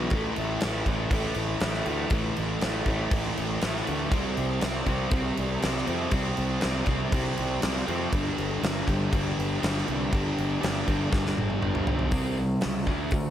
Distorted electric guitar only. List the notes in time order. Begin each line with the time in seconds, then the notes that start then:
Already playing: E2 B2 E3
0.15 A2 E3 A3
0.64 A2 E3 A3
0.87 A2 E3 A3
1.11 A2 E3 A3
1.62 A2 E3 A3
1.86 A2 E3 A3
2.12 A2 E3 A3
2.61 A2 E3 A3
2.88 A2 E3 A3
3.11 A2 E3 A3
3.62 A2 E3 A3
3.85 A2 E3 A3
4.10 C3 G3 C4
4.60 C3 G3 C4
4.86 C3 G3 C4
5.10 C3 G3 C4
5.61 C3 G3 C4
5.86 C3 G3 C4
6.11 C3 G3 C4
6.61 C3 G3 C4
6.85 C3 G3 C4
7.11 C3 G3 C4
7.61 C3 G3 C4
7.87 C3 G3 C4
8.12 G2 D3 G3
8.63 G2 D3 G3
8.88 G2 D3 G3
9.12 G2 D3 G3
9.61 G2 D3 G3
9.86 G2 D3 G3
10.11 G2 D3 G3
10.60 G2 D3 G3
10.86 G2 D3 G3
11.10 G2 D3 G3
11.61 G2 D3 G3
11.87 G2 D3 G3
12.12 C3 G3 C4
12.38 C3 G3
12.61 C3 G3
12.87 D3 A3 D4
13.12 D3 A3